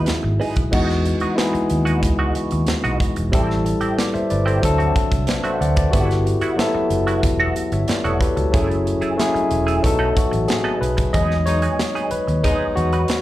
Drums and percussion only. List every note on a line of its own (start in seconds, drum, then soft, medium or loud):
0.06 snare loud
0.06 closed hi-hat medium
0.41 open hi-hat soft
0.56 kick medium
0.56 closed hi-hat soft
0.73 kick loud
0.73 crash medium
0.89 snare soft
1.05 closed hi-hat medium
1.20 closed hi-hat soft
1.38 snare loud
1.38 closed hi-hat medium
1.55 closed hi-hat soft
1.70 closed hi-hat medium
1.87 closed hi-hat soft
2.03 kick medium
2.03 closed hi-hat loud
2.35 closed hi-hat medium
2.51 closed hi-hat soft
2.66 snare loud
2.66 closed hi-hat medium
2.84 closed hi-hat soft
3.00 kick medium
3.00 closed hi-hat medium
3.16 closed hi-hat medium
3.33 kick loud
3.33 closed hi-hat medium
3.50 snare soft
3.66 closed hi-hat medium
3.81 closed hi-hat soft
3.99 snare loud
3.99 closed hi-hat medium
4.16 closed hi-hat soft
4.30 closed hi-hat medium
4.48 closed hi-hat soft
4.63 kick medium
4.63 closed hi-hat medium
4.80 closed hi-hat soft
4.96 kick medium
4.96 closed hi-hat medium
5.12 kick medium
5.12 closed hi-hat soft
5.27 snare loud
5.27 closed hi-hat medium
5.44 closed hi-hat soft
5.62 closed hi-hat medium
5.76 kick medium
5.76 closed hi-hat medium
5.93 kick loud
5.93 closed hi-hat medium
6.11 snare soft
6.11 closed hi-hat soft
6.27 closed hi-hat medium
6.41 closed hi-hat soft
6.59 snare loud
6.59 closed hi-hat medium
6.90 closed hi-hat medium
7.08 closed hi-hat soft
7.23 kick medium
7.23 closed hi-hat medium
7.56 closed hi-hat medium
7.72 closed hi-hat soft
7.88 snare loud
7.88 closed hi-hat medium
8.05 closed hi-hat soft
8.21 kick medium
8.21 closed hi-hat medium
8.37 closed hi-hat soft
8.54 kick loud
8.54 closed hi-hat medium
8.71 closed hi-hat soft
8.87 closed hi-hat medium
9.02 closed hi-hat soft
9.20 snare loud
9.20 closed hi-hat medium
9.36 closed hi-hat soft
9.51 closed hi-hat medium
9.68 closed hi-hat soft
9.84 kick medium
9.84 closed hi-hat loud
10.17 kick medium
10.17 closed hi-hat medium
10.33 closed hi-hat soft
10.48 snare loud
10.48 closed hi-hat medium
10.83 closed hi-hat medium
10.98 kick medium
10.98 closed hi-hat medium
11.14 kick loud
11.14 closed hi-hat medium
11.31 snare soft
11.47 closed hi-hat medium
11.62 closed hi-hat soft
11.79 snare loud
11.79 closed hi-hat medium
11.96 closed hi-hat soft
12.11 closed hi-hat medium
12.28 closed hi-hat soft
12.44 kick medium
12.44 closed hi-hat medium
12.77 closed hi-hat medium
12.93 closed hi-hat soft
13.08 snare loud
13.08 closed hi-hat medium